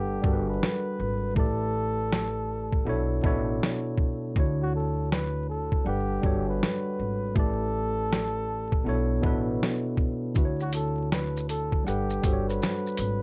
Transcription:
Already playing: upright bass G1, tine electric piano G3 D4 A4 B4 F#5, flugelhorn G4
0.22 upright bass G1, tine electric piano G3 D4 F#4 A4, kick
0.26 tine electric piano A#4
0.33 tine electric piano B4
0.50 flugelhorn B4
0.63 snare
0.99 upright bass G#1
1.35 upright bass A1, tine electric piano A3 E4 G4 B4, flugelhorn A4, kick
1.39 tine electric piano D5
2.13 snare
2.72 kick
2.85 upright bass B1, tine electric piano B2 B3 D4 E4 A4
2.89 tine electric piano C#5
3.22 upright bass A1, tine electric piano B2 B3 D4 E4 A4, kick
3.26 tine electric piano C#5
3.63 snare
3.98 kick
4.35 upright bass D2, tine electric piano D3 D4 E4 F#4, kick
4.40 tine electric piano C#5
4.63 flugelhorn F#4
4.76 flugelhorn A4
5.12 flugelhorn B4, snare
5.50 flugelhorn A4
5.72 kick
5.84 upright bass G1, tine electric piano G3 D4 A4 F#5, flugelhorn G4
5.89 tine electric piano B4
6.21 upright bass G1, tine electric piano G3 D4 F#4 A4, kick
6.26 tine electric piano C#5
6.49 flugelhorn B4
6.63 snare
6.99 upright bass G#1
7.35 upright bass A1, tine electric piano A3 E4 G4 B4, flugelhorn A4, kick
7.39 tine electric piano D5
8.13 snare
8.72 kick
8.84 upright bass B1, tine electric piano B2 B3 D4 E4 A4
8.89 tine electric piano C#5
9.22 upright bass A1, tine electric piano B2 B3 D4 E4 A4, kick
9.26 tine electric piano B4
9.63 snare
9.97 kick
10.34 upright bass D2, tine electric piano D3 D4 E4 F#4, kick, shaker
10.39 tine electric piano B4
10.45 tine electric piano C#5
10.60 flugelhorn F#4, shaker
10.73 flugelhorn A4, closed hi-hat, shaker
11.12 flugelhorn B4, snare, shaker
11.37 shaker
11.49 flugelhorn A4, closed hi-hat, shaker
11.72 kick
11.84 upright bass G1, tine electric piano G3 D4 A4 F#5, flugelhorn G4, shaker
11.89 tine electric piano B4
12.10 shaker
12.22 upright bass G1, tine electric piano G3 D4 F#4 A4, kick, closed hi-hat, shaker
12.27 tine electric piano C5
12.33 tine electric piano C#5
12.49 flugelhorn B4, shaker
12.62 snare, shaker
12.87 shaker
12.97 upright bass G#1, closed hi-hat, shaker

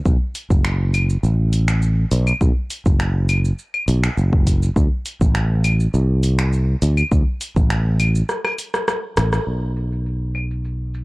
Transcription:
0.06 fretless electric bass B1, kick, shaker
0.35 open hi-hat, shaker
0.50 fretless electric bass F#1, kick, shaker
0.65 finger snap, shaker
0.94 open hi-hat, claves, shaker
1.10 shaker
1.23 fretless electric bass A1, shaker
1.53 open hi-hat, shaker
1.68 finger snap, shaker
1.82 shaker
2.11 fretless electric bass B1, open hi-hat, shaker
2.27 claves, shaker
2.41 fretless electric bass B1, kick, shaker
2.70 open hi-hat, shaker
2.86 fretless electric bass F#1, kick, shaker
3.00 finger snap, shaker
3.29 open hi-hat, claves, shaker
3.45 shaker
3.59 shaker
3.74 claves
3.88 fretless electric bass B1, open hi-hat, shaker
4.04 finger snap, shaker
4.17 fretless electric bass F#1, shaker
4.33 kick
4.47 kick, open hi-hat, shaker
4.63 shaker
4.76 fretless electric bass D2, kick, shaker
5.06 open hi-hat, shaker
5.21 fretless electric bass A1, kick, shaker
5.35 finger snap, shaker
5.64 open hi-hat, claves, shaker
5.80 shaker
5.94 fretless electric bass C2, shaker
6.23 open hi-hat, shaker
6.39 finger snap, shaker
6.53 shaker
6.82 fretless electric bass D2, open hi-hat, shaker
6.97 claves, shaker
7.12 fretless electric bass D2, kick, shaker
7.41 open hi-hat, shaker
7.56 fretless electric bass A1, kick, shaker
7.70 finger snap, shaker
8.00 open hi-hat, claves, shaker
8.15 shaker
8.29 cross-stick, shaker
8.45 cross-stick, claves
8.58 open hi-hat, shaker
8.74 cross-stick, shaker
8.88 cross-stick, shaker
9.17 fretless electric bass A1, cross-stick, open hi-hat, shaker
9.33 cross-stick, shaker
9.47 fretless electric bass B1, shaker
9.76 shaker
9.92 shaker
10.06 shaker
10.35 claves, shaker
10.51 shaker
10.65 shaker
10.94 shaker

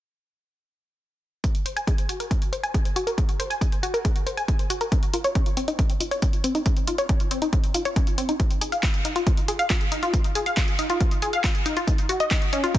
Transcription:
1.44 synth pluck G#4, kick, closed hi-hat
1.55 closed hi-hat
1.66 synth pluck C5, closed hi-hat
1.76 synth pluck G#5, closed hi-hat
1.87 synth pluck G#4, kick, closed hi-hat
1.98 closed hi-hat
2.09 synth pluck F#4, closed hi-hat
2.20 synth pluck A#4, closed hi-hat
2.31 synth pluck G#4, kick, closed hi-hat
2.42 closed hi-hat
2.53 synth pluck C5, closed hi-hat
2.63 synth pluck G#5, closed hi-hat
2.74 synth pluck G#4, kick, closed hi-hat
2.85 closed hi-hat
2.96 synth pluck F#4, closed hi-hat
3.07 synth pluck A#4, closed hi-hat
3.18 synth pluck G#4, kick, closed hi-hat
3.29 closed hi-hat
3.40 synth pluck C5, closed hi-hat
3.50 synth pluck G#5, closed hi-hat
3.61 synth pluck G#4, kick, closed hi-hat
3.72 closed hi-hat
3.83 synth pluck F#4, closed hi-hat
3.94 synth pluck A#4, closed hi-hat
4.05 synth pluck G#4, kick, closed hi-hat
4.16 closed hi-hat
4.27 synth pluck C5, closed hi-hat
4.37 synth pluck G#5, closed hi-hat
4.48 synth pluck G#4, kick, closed hi-hat
4.59 closed hi-hat
4.70 synth pluck F#4, closed hi-hat
4.81 synth pluck A#4, closed hi-hat
4.92 synth pluck C#4, kick, closed hi-hat
5.03 closed hi-hat
5.14 synth pluck F4, closed hi-hat
5.24 synth pluck C#5, closed hi-hat
5.35 synth pluck C#4, kick, closed hi-hat
5.46 closed hi-hat
5.57 synth pluck C4, closed hi-hat
5.68 synth pluck D#4, closed hi-hat
5.79 synth pluck C#4, kick, closed hi-hat
5.90 closed hi-hat
6.00 synth pluck F4, closed hi-hat
6.11 synth pluck C#5, closed hi-hat
6.22 synth pluck C#4, kick, closed hi-hat
6.33 closed hi-hat
6.44 synth pluck C4, closed hi-hat
6.55 synth pluck D#4, closed hi-hat
6.66 synth pluck C#4, kick, closed hi-hat
6.77 closed hi-hat
6.87 synth pluck F4, closed hi-hat
6.98 synth pluck C#5, closed hi-hat
7.09 synth pluck C#4, kick, closed hi-hat
7.20 closed hi-hat
7.31 synth pluck C4, closed hi-hat
7.42 synth pluck D#4, closed hi-hat
7.53 synth pluck C#4, kick, closed hi-hat
7.64 closed hi-hat
7.74 synth pluck F4, closed hi-hat
7.85 synth pluck C#5, closed hi-hat
7.96 synth pluck C#4, kick, closed hi-hat
8.07 closed hi-hat
8.18 synth pluck C4, closed hi-hat
8.29 synth pluck D#4, closed hi-hat
8.40 synth pluck F4, kick, closed hi-hat
8.51 closed hi-hat
8.61 synth pluck G#4, closed hi-hat
8.72 synth pluck F5, closed hi-hat
8.83 synth pluck F4, kick, clap, closed hi-hat
8.94 closed hi-hat
9.05 synth pluck D#4, closed hi-hat
9.16 synth pluck F4, closed hi-hat
9.27 synth pluck F4, kick, closed hi-hat
9.37 closed hi-hat
9.48 synth pluck G#4, closed hi-hat
9.59 synth pluck F5, closed hi-hat
9.70 synth pluck F4, kick, clap, closed hi-hat
9.81 closed hi-hat
9.92 synth pluck D#4, closed hi-hat
10.03 synth pluck F4, closed hi-hat
10.14 synth pluck F4, kick, closed hi-hat
10.24 closed hi-hat
10.35 synth pluck G#4, closed hi-hat
10.46 synth pluck F5, closed hi-hat
10.57 synth pluck F4, kick, clap, closed hi-hat
10.68 closed hi-hat
10.79 synth pluck D#4, closed hi-hat
10.90 synth pluck F4, closed hi-hat
11.01 synth pluck F4, kick, closed hi-hat
11.11 closed hi-hat
11.22 synth pluck G#4, closed hi-hat
11.33 synth pluck F5, closed hi-hat
11.44 synth pluck F4, kick, clap, closed hi-hat
11.55 closed hi-hat
11.66 synth pluck D#4, closed hi-hat
11.77 synth pluck F4, closed hi-hat
11.87 synth pluck D#4, kick, closed hi-hat
11.98 closed hi-hat
12.09 synth pluck F#4, closed hi-hat
12.20 synth pluck D#5, closed hi-hat
12.31 synth pluck D#4, kick, clap, closed hi-hat
12.42 closed hi-hat
12.53 synth pluck C#4, closed hi-hat
12.64 synth pluck F4, closed hi-hat
12.74 synth pluck D#4, kick, closed hi-hat

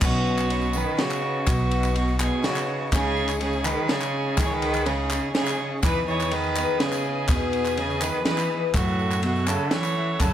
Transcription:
Already playing: steel-string acoustic guitar C#4
0.00 upright bass B1, cello B2, twelve-string acoustic guitar B3 D#4 F#4 C#5, fiddle F#4, tonewheel organ B4 D#5 C#6, kick, clap, crash, tambourine
0.14 tambourine
0.27 tambourine
0.38 clap, tambourine
0.48 twelve-string acoustic guitar B3 D#4 F#4, ride
0.52 twelve-string acoustic guitar C#5
0.61 tambourine
0.73 cello D#3, fiddle B4, tambourine
0.97 cello C#3, twelve-string acoustic guitar B3 D#4 F#4 C#5, fiddle F#4, snare, clap, ride
1.10 clap, tambourine
1.22 twelve-string acoustic guitar D#4 F#4 C#5
1.46 upright bass B1, cello B2, twelve-string acoustic guitar B3 D#4 F#4 C#5, fiddle F#4, kick, clap, ride, tambourine
1.71 ride, tambourine
1.83 clap, tambourine
1.94 cello B2, twelve-string acoustic guitar B3 D#4 F#4 C#5, fiddle F#4, ride
2.08 tambourine
2.20 cello B2, fiddle G#4, clap, tambourine
2.43 cello C#3, twelve-string acoustic guitar B3 D#4 F#4 C#5, fiddle F#4, snare, clap, ride
2.56 clap, tambourine
2.67 twelve-string acoustic guitar D#4 F#4 C#5
2.91 upright bass C#2, twelve-string acoustic guitar C#3 G#3 C#4 D#4 G#4, cello C#3, tonewheel organ G#4 C#6, fiddle G#4, kick, clap, ride, tambourine
3.17 tambourine
3.29 clap, tambourine
3.39 cello C#3, twelve-string acoustic guitar G#3 C#4 D#4 G#4, fiddle G#4, ride
3.53 tambourine
3.64 cello D#3, fiddle B4, clap, tambourine
3.87 cello C#3, twelve-string acoustic guitar G#3 C#4 D#4, fiddle G#4, snare, clap, ride
3.91 twelve-string acoustic guitar G#4
4.01 clap, tambourine
4.37 upright bass C#2, twelve-string acoustic guitar C#3 G#3 C#4 D#4 G#4, cello D#3, fiddle G#4, kick, clap, ride, tambourine
4.44 cello E3, fiddle C#5
4.51 cello D#3, fiddle B4
4.62 ride
4.74 clap, tambourine
4.86 cello C#3, twelve-string acoustic guitar G#3 C#4 D#4 G#4, fiddle G#4, clap, ride, tambourine
5.10 twelve-string acoustic guitar C#4 D#4 G#4, clap, tambourine
5.34 cello C#3, twelve-string acoustic guitar G#3 C#4 D#4 G#4, fiddle G#4, snare, ride
5.46 clap, tambourine
5.58 twelve-string acoustic guitar C#4 D#4 G#4
5.82 twelve-string acoustic guitar E2 B2 E3 B3 D#4 G#4, upright bass E2, cello E3, tonewheel organ G#4 D#5 D#6, fiddle B4, kick, clap, ride, tambourine
5.95 tambourine
6.07 cello E3, fiddle C#5, tambourine
6.20 clap, tambourine
6.31 cello D#3, twelve-string acoustic guitar E3 B3 D#4 G#4, fiddle B4, ride
6.43 tambourine
6.55 twelve-string acoustic guitar E3 B3 D#4 G#4, clap, tambourine
6.79 cello C#3, twelve-string acoustic guitar E3 B3 D#4 G#4, fiddle G#4, snare, clap, ride
6.92 clap, tambourine
7.04 twelve-string acoustic guitar E3 B3 D#4 G#4
7.28 twelve-string acoustic guitar E2 B2 E3 B3 D#4 G#4, upright bass E2, cello B2, fiddle G#4, kick, clap, ride, tambourine
7.53 ride, tambourine
7.65 clap, tambourine
7.77 cello C#3, twelve-string acoustic guitar E3 B3 D#4 G#4, fiddle G#4, ride
7.90 tambourine
8.01 cello D#3, twelve-string acoustic guitar E3 B3 D#4 G#4, fiddle B4, clap, tambourine
8.24 cello E3, twelve-string acoustic guitar E3 B3 D#4, fiddle B4, snare, clap, ride
8.29 twelve-string acoustic guitar G#4
8.38 clap, tambourine
8.50 twelve-string acoustic guitar E3 B3 D#4 G#4
8.73 upright bass F#2, cello A2, twelve-string acoustic guitar F#3 A3 C#4 E4, fiddle F#4, tonewheel organ A4 F#5 E6, kick, clap, ride, tambourine
8.88 tambourine
8.99 tambourine
9.11 clap, tambourine
9.22 cello B2, twelve-string acoustic guitar F#3 A3 C#4 E4, fiddle F#4, ride
9.36 tambourine
9.47 cello C#3, twelve-string acoustic guitar A3 E4, fiddle A4, clap, tambourine
9.71 cello E3, twelve-string acoustic guitar F#3 A3 C#4 E4, fiddle C#5, snare, clap, ride
9.84 clap, tambourine
9.95 twelve-string acoustic guitar A3 C#4 E4
10.20 upright bass F#2, cello C#3, twelve-string acoustic guitar F#3 A3 C#4 E4, fiddle A4, kick, clap, ride, tambourine

